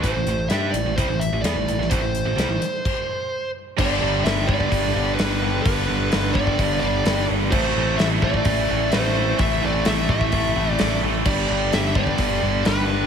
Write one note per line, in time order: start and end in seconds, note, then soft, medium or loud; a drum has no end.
0.03 0.15 A1 medium
0.03 0.14 A2 medium
0.03 0.15 E3 loud
0.03 0.47 C5 medium
0.03 kick medium
0.03 closed hi-hat medium
0.15 0.26 A1 medium
0.15 0.25 A2 medium
0.15 0.26 E3 medium
0.27 0.49 A1 medium
0.27 0.46 A2 medium
0.27 0.46 E3 medium
0.27 closed hi-hat soft
0.49 0.72 G2 medium
0.49 0.73 G3 medium
0.49 0.74 D4 medium
0.49 0.74 G4 loud
0.49 0.71 E5 loud
0.49 snare loud
0.49 closed hi-hat medium
0.71 0.85 A1 medium
0.71 0.85 A2 medium
0.71 0.86 E3 medium
0.71 0.94 D5 loud
0.71 closed hi-hat medium
0.86 0.97 A1 medium
0.86 0.97 A2 medium
0.86 0.98 E3 medium
0.96 1.08 C2 medium
0.96 1.09 C3 medium
0.96 1.09 G3 medium
0.96 1.21 C5 medium
0.96 kick loud
0.96 closed hi-hat medium
1.08 1.31 A1 medium
1.08 1.28 A2 medium
1.08 1.28 E3 medium
1.20 1.41 E5 loud
1.20 closed hi-hat medium
1.32 1.43 A1 medium
1.32 1.44 A2 medium
1.32 1.43 E3 medium
1.42 1.55 E2 medium
1.42 1.56 E3 medium
1.42 1.56 B3 loud
1.42 1.92 D5 loud
1.42 snare loud
1.42 closed hi-hat medium
1.55 1.67 A1 medium
1.55 1.67 A2 medium
1.55 1.68 E3 medium
1.67 1.78 A1 medium
1.67 1.79 A2 medium
1.67 1.80 E3 medium
1.67 closed hi-hat medium
1.78 1.90 A1 medium
1.78 1.90 A2 medium
1.78 1.92 E3 medium
1.78 snare soft
1.90 2.01 A1 loud
1.90 2.02 A2 medium
1.90 2.02 E3 loud
1.90 3.50 C5 medium
1.90 kick medium
1.90 closed hi-hat medium
2.01 2.24 A1 medium
2.01 2.22 A2 medium
2.01 2.22 E3 medium
2.15 closed hi-hat medium
2.26 2.36 A1 medium
2.26 2.36 A2 soft
2.26 2.37 E3 medium
2.37 2.48 C2 medium
2.37 2.49 C3 medium
2.37 2.49 G3 loud
2.37 snare loud
2.37 closed hi-hat medium
2.49 2.60 A1 medium
2.49 2.61 A2 medium
2.49 2.62 E3 medium
2.62 muted distorted electric guitar stroke medium
2.62 closed hi-hat medium
2.85 kick loud
2.85 crash medium
3.78 3.99 G1 medium
3.78 4.00 G2 medium
3.78 4.00 D3 loud
3.78 4.01 G3 loud
3.78 4.49 B3 loud
3.78 4.48 D4 loud
3.78 4.27 D5 medium
3.78 kick loud
3.78 crash loud
4.01 4.22 G1 medium
4.01 4.23 G2 medium
4.01 4.23 D3 loud
4.01 4.24 G3 loud
4.24 4.66 G1 medium
4.24 4.47 G2 medium
4.24 4.47 D3 loud
4.24 4.48 G3 loud
4.24 4.46 E5 loud
4.24 snare loud
4.24 open hi-hat medium
4.47 4.70 G2 medium
4.47 4.70 D3 medium
4.47 4.71 G3 medium
4.47 5.18 B3 medium
4.47 5.17 D4 medium
4.47 5.14 D5 loud
4.47 kick loud
4.52 5.17 G2 medium
4.60 kick medium
4.71 4.92 G1 medium
4.71 4.93 G2 loud
4.71 4.94 D3 medium
4.71 4.95 G3 medium
4.71 kick medium
4.71 open hi-hat medium
4.94 5.16 G1 medium
4.94 5.16 G2 medium
4.94 5.16 D3 medium
4.94 5.17 G3 loud
5.15 5.39 G2 loud
5.15 5.40 D3 loud
5.15 5.40 G3 loud
5.15 5.61 B4 medium
5.15 open hi-hat medium
5.20 5.60 G1 medium
5.20 5.66 B3 medium
5.20 5.66 D4 medium
5.20 snare loud
5.40 5.62 G2 medium
5.40 5.63 D3 medium
5.40 5.63 G3 loud
5.63 5.86 G1 loud
5.63 5.86 G2 medium
5.63 5.87 D3 loud
5.63 5.87 G3 loud
5.63 6.30 B4 medium
5.63 kick loud
5.63 open hi-hat medium
5.68 6.35 B3 loud
5.68 6.34 D4 loud
5.87 6.10 G1 medium
5.87 6.10 G2 medium
5.87 6.10 D3 loud
5.87 6.11 G3 loud
6.11 6.33 G1 loud
6.11 6.33 G2 loud
6.11 6.33 D3 loud
6.11 6.34 G3 medium
6.11 snare loud
6.11 open hi-hat medium
6.33 6.56 G1 medium
6.33 6.57 G2 medium
6.33 6.58 D3 medium
6.33 6.58 G3 loud
6.33 7.05 B3 loud
6.33 7.04 D4 medium
6.33 6.78 D5 medium
6.33 kick loud
6.39 7.03 G2 medium
6.39 7.05 D3 medium
6.47 kick medium
6.58 6.79 G1 medium
6.58 6.81 G2 medium
6.58 6.82 D3 medium
6.58 6.82 G3 loud
6.58 kick loud
6.58 open hi-hat medium
6.80 7.02 G1 loud
6.80 7.03 G2 medium
6.80 7.04 D3 medium
6.80 7.05 G3 loud
6.80 7.25 D5 loud
7.05 7.26 G1 medium
7.05 7.27 G2 loud
7.05 7.28 D3 loud
7.05 7.28 G3 loud
7.05 7.52 B3 medium
7.05 snare loud
7.05 open hi-hat medium
7.09 7.52 D4 medium
7.28 7.50 G1 medium
7.28 7.50 G2 medium
7.28 7.51 D3 loud
7.28 7.51 G3 medium
7.51 7.72 A1 loud
7.51 7.74 A2 medium
7.51 7.74 E3 loud
7.51 7.75 A3 loud
7.51 8.22 C4 loud
7.51 7.95 C5 medium
7.51 kick loud
7.51 crash loud
7.56 8.21 E4 loud
7.74 7.96 A1 loud
7.74 7.98 A2 medium
7.74 7.99 E3 medium
7.74 8.00 A3 loud
7.98 8.40 A1 medium
7.98 8.21 A2 medium
7.98 8.22 E3 loud
7.98 8.23 A3 loud
7.98 8.05 E5 loud
7.98 snare loud
7.98 open hi-hat medium
8.21 8.44 A2 medium
8.21 8.44 E3 medium
8.21 8.46 A3 loud
8.21 8.91 C4 medium
8.21 8.90 E4 loud
8.21 8.94 D5 loud
8.21 kick loud
8.34 kick medium
8.45 8.66 A1 loud
8.45 8.68 A2 medium
8.45 8.68 E3 loud
8.45 8.69 A3 medium
8.45 kick loud
8.45 open hi-hat medium
8.69 8.90 A1 medium
8.69 8.91 A2 medium
8.69 8.91 E3 medium
8.69 8.92 A3 medium
8.92 9.33 A1 medium
8.92 9.14 A2 medium
8.92 9.14 E3 loud
8.92 9.15 A3 loud
8.92 9.39 C4 loud
8.92 9.37 C5 medium
8.92 snare loud
8.92 open hi-hat medium
8.96 9.39 E4 loud
9.15 9.38 A2 medium
9.15 9.39 E3 loud
9.15 9.39 A3 loud
9.39 9.59 A1 loud
9.39 9.61 A2 loud
9.39 9.61 E3 loud
9.39 9.62 A3 loud
9.39 10.08 C4 loud
9.39 10.08 E4 loud
9.39 9.63 E5 medium
9.39 kick loud
9.39 open hi-hat medium
9.62 9.83 A1 medium
9.62 9.84 A2 loud
9.62 9.85 E3 medium
9.62 9.86 A3 medium
9.62 9.86 D5 medium
9.85 10.06 A1 loud
9.85 10.09 A2 medium
9.85 10.10 E3 loud
9.85 10.10 A3 loud
9.85 10.08 E5 loud
9.85 snare loud
9.85 open hi-hat medium
10.09 10.29 A1 loud
10.09 10.32 A2 medium
10.09 10.33 E3 medium
10.09 10.33 A3 medium
10.09 10.78 C4 medium
10.09 10.77 E4 loud
10.09 10.73 E5 medium
10.09 kick medium
10.21 kick medium
10.32 10.53 A1 medium
10.32 10.55 A2 medium
10.32 10.55 E3 medium
10.32 10.56 A3 medium
10.32 kick loud
10.32 open hi-hat medium
10.56 10.76 A1 medium
10.56 10.78 A2 medium
10.56 10.78 E3 medium
10.56 10.79 A3 medium
10.73 10.99 D5 medium
10.79 11.00 A1 medium
10.79 11.01 A2 medium
10.79 11.01 E3 medium
10.79 11.02 A3 loud
10.79 11.25 C4 medium
10.79 11.26 E4 medium
10.79 snare loud
10.79 open hi-hat medium
11.02 11.22 A1 medium
11.02 11.24 A2 medium
11.02 11.24 E3 medium
11.02 11.25 A3 loud
11.25 11.46 G1 medium
11.25 11.47 G2 loud
11.25 11.47 D3 loud
11.25 11.48 G3 loud
11.25 11.96 B3 loud
11.25 11.74 D5 medium
11.25 kick loud
11.25 crash loud
11.29 11.95 D4 loud
11.48 11.70 G1 medium
11.48 11.72 G2 loud
11.48 11.71 D3 medium
11.48 11.72 G3 loud
11.72 12.13 G1 medium
11.72 11.94 G2 medium
11.72 11.94 D3 medium
11.72 11.96 G3 loud
11.72 11.97 E5 loud
11.72 snare loud
11.72 open hi-hat medium
11.94 12.16 G2 medium
11.94 12.17 D3 medium
11.94 12.17 G3 loud
11.94 12.64 B3 medium
11.94 12.64 D4 medium
11.94 12.62 D5 loud
11.94 kick loud
11.99 12.64 G2 medium
12.07 kick medium
12.17 12.39 G1 medium
12.17 12.40 G2 medium
12.17 12.41 D3 medium
12.17 12.41 G3 loud
12.17 kick loud
12.17 open hi-hat medium
12.41 12.62 G1 medium
12.41 12.63 G2 medium
12.41 12.63 D3 medium
12.41 12.64 G3 medium
12.64 13.06 G1 medium
12.64 12.86 G2 loud
12.64 12.87 D3 loud
12.64 12.87 G3 loud
12.64 13.07 B3 medium
12.64 13.07 B4 loud
12.64 snare loud
12.64 open hi-hat medium
12.69 13.07 D4 medium
12.87 13.07 G2 medium
12.87 13.07 D3 loud
12.87 13.07 G3 loud